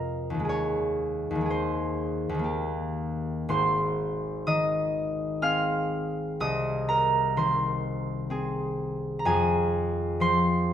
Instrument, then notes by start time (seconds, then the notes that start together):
harp
Already playing: F2 C3 G#3 G#4 A#4 C5 D#5 F5
0.30 D#2
0.34 D#3
0.40 G#3
0.45 G#4
0.49 C#5
1.31 D#2
1.35 D#3
1.41 G#3
1.46 G#4
1.50 C5
2.29 D#2
2.35 D#3
2.39 A#3
2.44 G4
3.49 G#1 C5 C6
4.47 D#3 D#5 D#6
5.42 C4 G#4 F5 F6
6.40 C2 D#5 D#6
6.89 A#4 A#5
7.37 D#3 C5 C6
8.30 C4 G#4
9.19 A#5
9.25 F2 G#4 G#5
10.20 F3 C5 C6